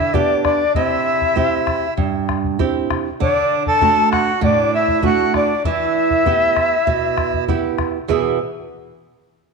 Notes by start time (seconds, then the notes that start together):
Already playing: D3 E4 E5
0.13 B3 D4 G4 D5, bombo low
0.44 D4 D5, bombo rim, bombo low
0.75 C3 E4 E5, bombo low
1.21 bombo low
1.36 C4 E4 G4, bombo low
1.67 bombo rim, bombo low
1.97 G2, bombo low
2.29 bombo rim, bombo low
2.44 bombo low
2.59 C4 E4 G4, bombo low
2.90 bombo rim, bombo low
3.20 D3 D4 D5, bombo low
3.66 A4 A5, bombo low
3.81 A3 D4 F#4, bombo low
4.12 F#4 F#5, bombo rim, bombo low
4.41 A2 D4 D5, bombo low
4.74 E4 E5
4.88 bombo low
5.02 A3 D4 F#4 F#5, bombo low
5.34 D4 D5, bombo rim, bombo low
5.65 E3 E4 E5, bombo low
6.11 bombo low
6.26 B3 E4 G4, bombo low
6.56 bombo rim, bombo low
6.87 B2, bombo low
7.18 bombo rim, bombo low
7.34 bombo low
7.48 B3 E4 G4, bombo low
7.78 bombo rim, bombo low
8.08 E2 B2 E3 B3 G#4 E5, bombo low